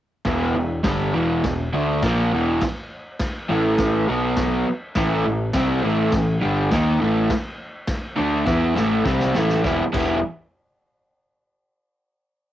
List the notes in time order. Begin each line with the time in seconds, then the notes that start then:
0.25 E1 E2 B2 E3, kick, snare, crash
0.55 E1 E2 B2
0.84 G1 G2 D3 G3, kick, snare, crash
1.14 E1 E2 B2 E3
1.44 E1 E2 B2, kick, snare, crash
1.73 D2 D3 A3 D4
2.02 A#1 A#2 F3 A#3, kick, snare, crash
2.33 E1 E2 B2 E3
2.61 kick, snare, crash
3.19 kick, snare, crash
3.49 A1 A2 E3 A3
3.78 kick, snare, crash
4.08 B1 B2 F#3 B3
4.37 kick, snare, crash
4.67 muted overdriven electric guitar stroke
4.95 A1 A2 E3 A3, kick, snare, crash
5.25 A1 A2 E3
5.53 C2 C3 G3 C4, kick, snare, crash
5.83 A1 A2 E3 A3
6.12 A1 A2 E3, kick, snare, crash
6.41 G1 G2 D3 G3
6.71 D#2 D#3 A#3 D#4, kick, snare, crash
7.00 A1 A2 E3 A3
7.30 kick, snare, crash
7.87 kick, snare, crash
8.16 D2 D3 A3 D4
8.45 E2 E3 B3 E4, kick, snare
8.75 A1 A2 E3 A3, snare
9.05 C2 C3 G3 C4, kick, snare
9.20 snare
9.34 A1 A2 E3 A3, snare
9.49 snare
9.63 E1 E2 B2 E3 G3 B3 E4, kick, snare
9.93 E1 E2 B2 E3 G3 B3 E4, kick, crash